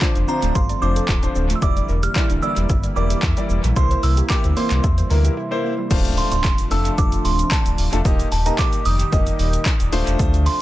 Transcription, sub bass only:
0.16 0.24 F1 medium
0.42 0.51 D1 medium
0.55 0.74 G1 medium
0.82 1.00 F1 medium
1.09 1.27 D1 loud
1.35 1.54 D1 loud
1.62 1.81 E1 loud
1.89 2.07 E1 medium
2.30 2.39 D1 medium
2.57 2.65 E1 medium
2.70 2.88 G1 medium
2.96 3.15 E1 medium
3.23 3.33 E2 loud
3.50 3.60 E1 medium
3.64 3.73 A#1 medium
3.76 3.95 C2 loud
4.03 4.22 C2 loud
4.44 4.53 D2 medium
4.71 4.80 C2 medium
4.84 5.02 E2 medium
5.10 5.29 D2 loud
5.91 6.19 D1 loud
6.32 6.40 D1 loud
6.71 6.90 F1 loud
6.98 7.17 F1 loud
7.25 7.43 D1 medium
7.66 7.74 D1 medium
7.78 7.88 D1 medium
7.93 8.01 E1 medium
8.05 8.24 D#1 loud
8.32 8.50 D#1 loud
8.85 9.04 F1 medium
9.13 9.31 F1 loud
9.39 9.58 D#1 medium
9.80 9.89 D#1 medium
9.93 10.02 D1 loud
10.07 10.15 E1 medium
10.19 10.48 D2 loud

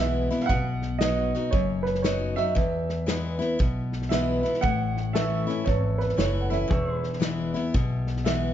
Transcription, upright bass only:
0.00 0.27 B1 medium
0.50 1.31 B1 medium
1.53 2.34 F#1 medium
2.57 3.38 E2 medium
3.60 4.42 B1 medium
4.64 5.46 A1 medium
5.68 6.12 G#1 medium
6.18 6.62 F#1 medium
6.71 7.53 E1 medium
7.75 8.54 B1 medium

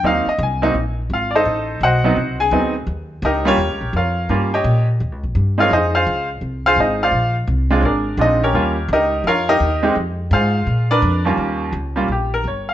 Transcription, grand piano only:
0.04 0.25 F#3 medium
0.04 0.25 A#3 medium
0.04 0.25 C4 medium
0.04 0.25 D#4 medium
0.04 0.28 F5 medium
0.29 0.40 D#5 medium
0.43 0.96 G#5 medium
0.62 0.73 F#3 medium
0.62 0.74 A#3 medium
0.62 0.74 C4 medium
0.62 0.74 D#4 medium
1.14 1.35 F4 medium
1.14 1.34 F5 medium
1.31 1.32 D5 medium
1.35 1.79 D#4 medium
1.35 1.79 A4 medium
1.35 1.79 C5 medium
1.35 1.79 D#5 medium
1.83 2.37 F#4 medium
1.83 2.37 C5 medium
1.83 2.37 D#5 medium
1.83 2.37 F#5 medium
2.04 2.15 F#3 medium
2.04 2.15 B3 medium
2.04 2.16 C4 medium
2.04 2.16 D#4 medium
2.40 2.73 G#4 medium
2.40 2.73 G#5 loud
2.52 2.73 F#3 medium
2.52 2.73 B3 medium
2.52 2.73 C4 medium
2.52 2.73 D#4 medium
3.25 3.46 D#4 medium
3.25 3.46 G4 medium
3.25 3.47 A#4 medium
3.25 3.46 D#5 medium
3.45 3.57 G3 medium
3.45 3.57 A#3 medium
3.45 3.57 C#4 medium
3.45 3.57 F4 medium
3.45 3.92 G4 medium
3.45 3.92 A#4 medium
3.45 3.91 C#5 loud
3.96 4.29 F4 medium
3.96 4.49 A#4 medium
3.96 4.50 C#5 medium
3.96 4.50 F5 medium
4.29 4.50 G3 medium
4.29 4.50 A#3 medium
4.29 4.50 C#4 medium
4.29 4.51 F4 medium
4.54 4.86 G4 medium
4.54 4.86 C#5 medium
4.54 4.86 D#5 medium
4.54 4.86 G5 medium
5.58 5.69 G#3 medium
5.58 5.69 C4 medium
5.58 5.70 D#4 medium
5.58 5.70 F4 medium
5.58 5.72 A#4 medium
5.58 5.71 C#5 medium
5.58 5.71 F5 medium
5.73 5.95 D#4 medium
5.73 5.94 G#4 medium
5.73 5.94 C5 medium
5.73 5.94 D#5 medium
5.95 6.27 F4 medium
5.95 6.28 G#4 medium
5.95 6.27 C5 medium
5.95 6.27 F5 medium
6.66 6.78 F4 medium
6.66 6.78 G#4 medium
6.66 6.78 C5 medium
6.66 6.77 F5 loud
6.80 7.01 D#4 medium
6.80 7.01 G#4 medium
6.80 7.01 C5 medium
6.80 7.01 D#5 medium
7.03 7.35 F4 medium
7.03 7.35 C5 medium
7.03 7.35 D5 medium
7.03 7.34 F5 medium
7.70 7.82 G#3 medium
7.70 7.82 C4 medium
7.70 7.82 D4 medium
7.70 7.82 F4 medium
7.80 7.83 C#5 medium
7.85 8.17 D4 medium
7.85 8.18 G#4 medium
7.85 8.17 A#4 medium
7.85 8.17 D5 medium
8.19 8.39 G#3 medium
8.19 8.40 C4 medium
8.19 8.40 D4 medium
8.19 8.43 D#4 medium
8.19 8.40 F4 medium
8.19 8.42 D#5 medium
8.44 8.53 C#4 medium
8.44 8.87 G4 medium
8.44 8.87 A#4 medium
8.44 8.87 C#5 medium
8.54 8.75 G3 medium
8.54 8.75 A#3 medium
8.54 8.75 C#4 medium
8.54 8.75 F4 medium
8.93 9.24 D#4 medium
8.93 9.24 G4 medium
8.93 9.25 A#4 medium
8.93 9.24 D#5 medium
9.27 9.49 F4 medium
9.27 9.48 A#4 medium
9.27 9.49 C#5 medium
9.27 9.48 F5 medium
9.49 9.82 D#4 medium
9.49 9.82 G4 medium
9.49 9.93 A#4 medium
9.49 9.93 D#5 loud
9.83 9.94 G#3 medium
9.83 9.94 C4 medium
9.83 9.95 D#4 medium
9.83 9.95 G4 medium
10.33 10.87 F4 medium
10.33 10.87 G#4 medium
10.33 10.65 C5 medium
10.33 10.87 F5 medium
10.91 11.23 D4 medium
10.91 11.24 A#4 medium
10.91 11.24 B4 medium
10.91 11.23 D5 loud
11.25 11.71 D#2 medium
11.25 11.71 G3 medium
11.25 11.71 A#3 medium
11.25 11.71 C#4 medium
11.25 11.71 F4 medium
11.96 12.07 G3 medium
11.96 12.07 A#3 medium
11.96 12.07 C#4 medium
11.96 12.08 F4 medium
12.12 12.33 G4 medium
12.34 12.45 A#4 medium
12.48 12.68 C#5 medium
12.69 12.74 F5 medium

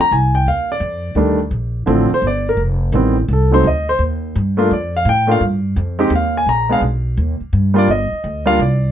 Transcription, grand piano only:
0.01 0.12 A#5 loud
0.12 0.34 G#5 medium
0.35 0.46 G5 medium
0.48 0.70 F5 medium
0.72 1.15 D5 medium
1.16 1.37 D#3 medium
1.16 1.38 G3 medium
1.16 1.38 A3 medium
1.16 1.38 D4 medium
1.86 2.08 D3 medium
1.86 2.08 F3 medium
1.86 2.08 A3 medium
1.86 2.08 C4 medium
1.92 2.12 A4 medium
2.14 2.24 C5 medium
2.27 2.47 D5 medium
2.49 2.59 A#4 medium
2.93 3.14 D#3 medium
2.93 3.15 G3 soft
2.93 3.15 B3 medium
2.93 3.15 C4 medium
3.33 3.53 A4 medium
3.51 3.63 F#3 medium
3.51 3.63 A3 medium
3.51 3.63 C4 medium
3.51 3.64 D#4 medium
3.51 3.65 C5 medium
3.67 3.88 D#5 medium
3.89 4.00 C5 medium
4.57 4.69 A3 medium
4.57 4.69 A#3 medium
4.57 4.69 D4 medium
4.57 4.69 F4 medium
4.73 4.94 D5 medium
4.97 5.07 F5 medium
5.09 5.30 G5 loud
5.27 5.39 A3 medium
5.27 5.39 A#3 medium
5.27 5.39 D4 medium
5.27 5.40 F4 medium
5.31 5.42 F5 medium
5.99 6.10 G#3 medium
5.99 6.10 C4 medium
5.99 6.10 D#4 medium
5.99 6.11 G4 medium
6.15 6.36 F5 medium
6.37 6.48 G#5 medium
6.49 6.70 A#5 medium
6.69 6.81 G#3 medium
6.69 6.81 B3 medium
6.69 6.81 D4 medium
6.69 6.82 G#4 medium
6.69 6.79 F5 medium
7.74 7.86 G3 medium
7.74 7.86 A#3 medium
7.74 7.87 D4 medium
7.74 7.87 F4 medium
7.78 7.89 D5 medium
7.91 8.44 D#5 medium
8.46 8.57 G3 medium
8.46 8.57 A#3 medium
8.46 8.58 D4 medium
8.46 8.58 F4 medium
8.46 8.59 F5 loud
8.62 8.92 D5 medium

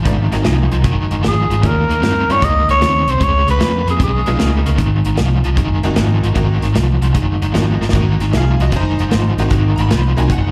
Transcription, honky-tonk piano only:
0.05 0.29 F3 medium
0.05 0.30 A3 soft
0.05 0.30 B3 medium
0.05 0.30 D4 medium
0.32 1.16 F#3 medium
0.32 1.16 A#3 soft
0.32 1.17 C4 soft
0.32 1.17 D#4 medium
1.63 1.87 G3 medium
1.63 1.87 A#3 soft
1.63 1.87 C#4 soft
1.63 1.88 F4 medium
2.29 2.41 G3 medium
2.29 2.41 A#3 medium
2.29 2.41 C#4 medium
2.29 2.41 F4 medium
4.27 4.76 G#3 medium
4.27 4.76 B3 medium
4.27 4.77 D#4 medium
4.27 4.77 F4 medium
5.83 6.33 A#3 medium
5.83 6.34 C4 medium
5.83 6.34 D#4 medium
5.83 6.34 F#4 medium
6.36 6.60 A#3 medium
6.36 6.60 C4 medium
6.36 6.60 D#4 medium
6.36 6.60 F#4 medium
7.54 7.78 A#3 medium
7.54 7.78 C4 soft
7.54 7.78 D#4 medium
7.54 7.79 F#4 medium
7.94 8.18 A#3 medium
7.94 8.18 C4 medium
7.94 8.18 D#4 soft
7.94 8.18 F#4 medium
8.33 8.60 G#4 medium
8.33 8.35 E5 medium
8.37 8.61 F5 medium
8.61 8.73 F#4 medium
8.61 8.73 D#5 medium
8.76 9.38 D#4 medium
8.76 9.51 C5 medium
9.39 9.88 A#3 medium
9.39 9.89 C4 medium
9.39 9.89 D#4 medium
9.39 9.89 F#4 medium
9.76 9.78 A#5 medium
9.80 10.18 B5 loud
10.17 10.29 A#3 medium
10.17 10.29 C4 medium
10.17 10.29 D#4 medium
10.17 10.29 F#4 medium
10.17 10.31 G#5 medium
10.32 10.51 F#5 medium

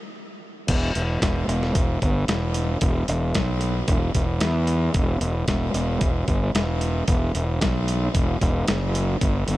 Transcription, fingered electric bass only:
0.69 0.92 E1 medium
0.96 1.19 E1 medium
1.22 1.45 E1 medium
1.48 1.71 E1 medium
1.75 1.99 E1 medium
2.02 2.25 G1 medium
2.28 2.75 E1 medium
2.82 3.05 E1 loud
3.08 3.32 E1 medium
3.35 3.82 B1 medium
3.88 4.12 E1 medium
4.15 4.38 E1 medium
4.41 4.88 E2 medium
4.95 5.18 E1 medium
5.21 5.44 E1 medium
5.48 5.71 E1 medium
5.74 5.97 E1 medium
6.02 6.25 E1 medium
6.28 6.51 G1 medium
6.55 7.01 E1 medium
7.08 7.31 E1 medium
7.35 7.58 E1 medium
7.62 8.08 B1 medium
8.15 8.38 E1 medium
8.41 8.65 E1 medium
8.68 9.15 F#1 medium
9.21 9.44 G1 medium
9.48 9.57 G1 medium

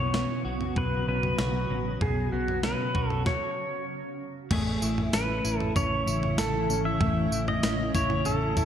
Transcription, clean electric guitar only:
0.00 2.00 B2 medium
0.00 2.31 B3 medium
0.14 1.07 C#4 medium
0.45 1.38 F#4 medium
0.76 3.26 F#3 medium
1.08 1.70 C#4 medium
1.39 2.94 F#4 medium
1.70 2.64 C#4 medium
2.01 3.32 B2 medium
2.32 3.32 B3 medium
2.64 3.83 C#4 medium
2.95 3.32 F#4 medium
4.51 7.00 A3 medium
4.51 6.39 G#4 medium
4.82 5.43 E4 medium
5.13 5.75 C#4 medium
5.44 6.06 E4 medium
5.76 6.69 C#4 soft
6.07 7.31 E4 medium
6.69 7.63 C#4 medium
7.01 8.65 A3 medium
7.32 7.93 E4 medium
7.63 8.25 C#4 medium
7.95 8.56 E4 medium
8.26 8.65 C#4 medium
8.57 8.65 E4 medium

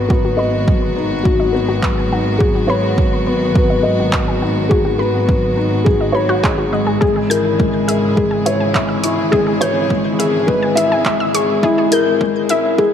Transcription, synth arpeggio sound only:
0.10 0.18 F#4 medium
0.25 0.32 F#4 medium
0.39 0.47 B5 medium
0.96 1.01 B4 medium
1.40 1.44 D#5 medium
1.54 1.59 B4 medium
1.69 1.73 F#4 medium
1.84 1.91 B4 medium
1.98 2.02 G#5 medium
2.12 2.24 F#5 medium
2.41 2.48 F#4 loud
2.55 2.63 F#4 medium
2.70 2.77 B5 medium
3.27 3.32 B4 medium
3.70 3.75 D#5 medium
3.85 3.90 B4 medium
4.00 4.04 F#4 medium
4.14 4.22 B4 medium
4.28 4.33 G#5 medium
4.42 4.54 F#5 medium
4.71 4.79 F#4 loud
4.85 4.93 F#4 medium
4.99 5.08 B5 loud
5.57 5.62 B4 medium
6.01 6.06 D#5 medium
6.15 6.23 B5 medium
6.29 6.34 F#4 loud
6.44 6.52 D#5 medium
6.58 6.70 F#4 medium
6.73 6.78 D#5 medium
6.87 6.99 G#4 medium
7.01 7.09 G#4 loud
7.16 7.24 G#4 medium
7.30 7.38 G6 medium
7.88 7.93 E5 medium
8.31 8.36 G#5 medium
8.46 8.51 E5 medium
8.60 8.72 G#5 medium
8.75 8.83 E5 medium
8.89 8.94 E6 medium
9.03 9.16 C#6 medium
9.32 9.40 G#4 loud
9.47 9.55 G#4 medium
9.61 9.69 G6 loud
10.19 10.24 E5 medium
10.63 10.67 G#5 medium
10.78 10.82 E5 medium
10.92 11.04 G#5 medium
11.06 11.14 E5 medium
11.20 11.25 E6 medium
11.35 11.47 C#6 medium
11.63 11.71 G#4 loud
11.78 11.86 G#4 medium
11.92 12.00 G6 medium
12.50 12.55 E5 medium

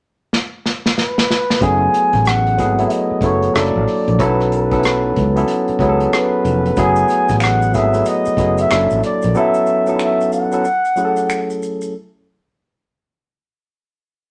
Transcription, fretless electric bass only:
1.62 1.87 F#1 medium
2.14 2.59 A1 medium
2.59 2.84 G#1 medium
3.11 muted fretless electric bass stroke soft
3.21 3.48 F#1 medium
3.55 3.71 F#1 medium
3.75 3.85 A1 medium
4.08 4.20 A#1 medium
4.20 5.12 B1 medium
5.17 5.43 C#2 medium
5.69 muted fretless electric bass stroke soft
5.80 6.06 C#2 medium
6.45 6.71 F1 medium
6.77 7.03 F#1 medium
7.30 7.75 A1 medium
7.75 8.01 G#1 medium
8.27 muted fretless electric bass stroke soft
8.38 8.64 F#1 medium
8.71 8.87 F#1 medium
8.91 9.01 A1 medium
9.24 9.33 A#1 medium

